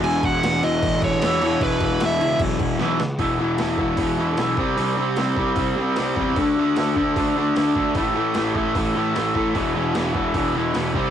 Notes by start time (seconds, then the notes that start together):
Already playing: E2 B2 E3 B3
0.03 E1 G#5, crash
0.23 E1 F#5, kick, crash
0.43 E1, snare, crash
0.62 E1 E2 B2 E3 D#5, crash
0.82 A1, kick, crash
1.02 C#5, kick, crash
1.21 E1 E2 B2 E3, snare, crash
1.41 E2 B2 E3, crash
1.61 E1 B4, kick, crash
1.80 E1, kick, crash
1.85 B4
2.00 E1, snare, crash
2.06 E5
2.19 C#2 E2 B2 E3, crash
2.39 B1, kick, crash
2.60 E1, kick, crash
2.79 B1 E2 B2 E3, snare
3.00 C#2, snare
3.19 E1 E2 B2 E3, kick, open hi-hat
3.39 E1 E2 B2 E3
3.58 E1 E2 B2 E3, snare, open hi-hat
3.77 E1 E2 B2 E3, kick
3.97 E1 E2 B2 E3, kick, open hi-hat
4.17 E2 B2 E3
4.37 B1 E2 B2 E3, snare, open hi-hat
4.57 C2 C3 G3 C4, kick
4.77 C2 C3 G3 C4, open hi-hat
4.97 C3 G3 C4
5.16 C2 C3 G3 C4, snare, open hi-hat
5.37 C2 C3 G3 C4, kick
5.56 C2 C3 G3 C4, kick, open hi-hat
5.76 C2 C3 G3 C4
5.96 C2 C3 G3 C4, snare, open hi-hat
6.16 E2 C3 G3 C4, kick
6.36 D2 D3 A3 D4, kick, open hi-hat
6.56 D2 D3 A3 D4
6.76 D2 D3 A3 D4, snare, open hi-hat
6.96 D2 D3 A3 D4, kick
7.16 D2 D3 A3 D4, kick, open hi-hat
7.36 D3 A3 D4
7.56 D2 D3 A3 D4, snare, open hi-hat
7.75 D2 D3 A3 D4, kick
7.95 A1 A2 E3 A3, kick, open hi-hat
8.15 A2 E3 A3
8.34 A1 A2 E3 A3, snare, open hi-hat
8.55 A1 A2 E3 A3, kick
8.74 A1 A2 E3 A3, kick, open hi-hat
8.95 A1 A2 E3 A3
9.15 A1 A2 E3 A3, snare, open hi-hat
9.35 A1 A2 E3 A3, kick
9.55 E1 E2 B2 E3, kick, open hi-hat
9.75 E1 E2 B2 E3
9.94 E1 E2 B2 E3, snare, open hi-hat
10.14 E1 E2 B2 E3, kick
10.34 E1 E2 B2 E3, kick, open hi-hat
10.55 E2 B2 E3
10.74 E1 E2 B2 E3, snare, open hi-hat
10.94 C2 C3 G3 C4, kick